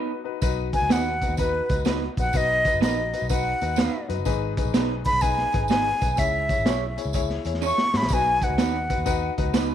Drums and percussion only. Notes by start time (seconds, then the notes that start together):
0.42 kick, closed hi-hat, tambourine
0.73 kick, closed hi-hat, tambourine
0.90 snare, closed hi-hat, tambourine
1.22 kick, closed hi-hat, tambourine
1.37 kick, closed hi-hat, tambourine
1.69 kick, closed hi-hat, tambourine
1.85 snare, closed hi-hat, tambourine
2.17 kick, closed hi-hat, tambourine
2.33 kick, closed hi-hat, tambourine
2.65 kick, closed hi-hat, tambourine
2.82 snare, closed hi-hat, tambourine
3.13 closed hi-hat, tambourine
3.29 kick, closed hi-hat, tambourine
3.61 closed hi-hat, tambourine
3.76 snare, closed hi-hat, tambourine
4.10 closed hi-hat, tambourine
4.25 kick, closed hi-hat, tambourine
4.57 kick, closed hi-hat, tambourine
4.74 snare, closed hi-hat, tambourine
5.06 kick, closed hi-hat, tambourine
5.21 kick, closed hi-hat, tambourine
5.38 snare
5.52 kick, closed hi-hat, tambourine
5.68 snare, closed hi-hat, tambourine
6.01 kick, closed hi-hat, tambourine
6.17 kick, closed hi-hat, tambourine
6.49 kick, closed hi-hat, tambourine
6.66 snare, closed hi-hat, tambourine
6.98 closed hi-hat, tambourine
7.13 kick, closed hi-hat, tambourine
7.30 snare
7.45 closed hi-hat, tambourine
7.54 snare
7.62 tambourine
7.78 snare
7.94 snare, tambourine
8.02 snare
8.09 kick, closed hi-hat, tambourine
8.42 kick, closed hi-hat, tambourine
8.58 snare, closed hi-hat, tambourine
8.90 kick, closed hi-hat, tambourine
9.06 kick, closed hi-hat, tambourine
9.38 kick, closed hi-hat, tambourine
9.54 snare, closed hi-hat, tambourine